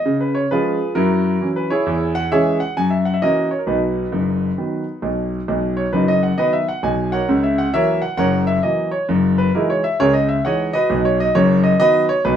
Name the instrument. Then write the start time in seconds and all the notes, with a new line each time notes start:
grand piano
Already playing: D#5
0.06 C#3
0.20 B4
0.35 C#5
0.51 F3 G#3 C#4 F4 G#4 B4
0.95 F#2 E4 F#4 A#4
1.41 E3 F#3 C#4
1.56 B4
1.70 E4 G#4 C#5
1.86 E2
2.15 F#5
2.32 E3 G#3 C#4 G#4 C#5 E5
2.60 F#5
2.77 F#2 G#5
2.90 E5
3.05 F#5
3.14 E5
3.22 E3 A#3 C#4 F#4 A#4 D#5
3.51 C#5
3.59 A#4
3.67 B1 B2 D#4 F#4 B4
4.12 F#1 F#2
4.58 D#3 F#3 B3
5.02 B1 B2
5.48 B1 B2
5.77 C#5
5.93 F#1 F#2 D#4 F#4 B4
6.08 D#5
6.23 F#5
6.38 D#3 F#3 B3 F#4 B4 D#5
6.53 E5
6.68 F#5
6.83 B1 B2 G#5
7.12 A#4 C#5 F#5
7.29 C#2 C#3
7.43 E5
7.58 F#5
7.74 E3 F#3 A#3 A#4 C#5 E5
8.02 F#5
8.17 F#1 F#2 A#4 C#5 F#5
8.47 E5
8.63 E3 F#3 A#3 D#5
8.91 C#5
9.09 F#1 F#2
9.38 B4
9.55 E3 G#3 D#4 E4 F#4 A#4
9.70 C#5
9.84 E5
10.00 C#2 C#3 G#4 A#4 C#5
10.13 D#5
10.29 E5
10.45 E3 G#3 D#4 C#5 D#5 F#5
10.73 F#4 B4 D#5
10.90 B1 B2
11.05 C#5
11.20 D#5
11.35 F#1 F#2 C#5
11.63 D#5
11.80 D#3 F#3 B3 F#4 B4 D#5
12.09 C#5
12.25 B1 B2 D#4 F#4 B4